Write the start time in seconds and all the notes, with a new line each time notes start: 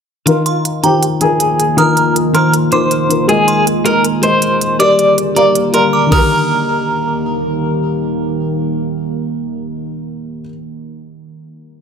0.26 D#3 A#3 D#4 F4 A#4, closed hi-hat
0.46 C6, closed hi-hat
0.65 closed hi-hat
0.83 D#3 D#4 F4 G4 C5 A#5, closed hi-hat
1.03 closed hi-hat
1.21 D#3 D#4 F4 G#4 A#4, closed hi-hat
1.40 closed hi-hat
1.60 closed hi-hat
1.77 D#3 D#4 F4 A#4 D#6, closed hi-hat
1.97 closed hi-hat
2.16 closed hi-hat
2.33 D#3 D#4 F4 A#4 C5 C6, closed hi-hat
2.54 closed hi-hat
2.71 D#3 D#4 F4 A#4 C5 D6, closed hi-hat
2.91 closed hi-hat
3.09 D#3 D#4 F4 A#4, closed hi-hat
3.27 G#3 A#3 G#4 A#4 D#5, closed hi-hat
3.48 C6, closed hi-hat
3.67 closed hi-hat
3.85 G#3 G#4 A#4 D#5 A#5, closed hi-hat
4.05 closed hi-hat
4.22 G#3 G#4 A#4 C5 D#5, closed hi-hat
4.42 closed hi-hat
4.61 closed hi-hat
4.79 D3 G3 G4 A#4 D5 D6, closed hi-hat
4.99 closed hi-hat
5.18 closed hi-hat
5.35 G3 G4 A#4 D5 F5 A#5, closed hi-hat
5.55 closed hi-hat
5.72 G3 G4 A#4 D5 C6, closed hi-hat
5.93 D6
6.07 D#3 D#4
6.12 D#3 A#3 G4 A#4 D#6, kick, crash
6.17 A#4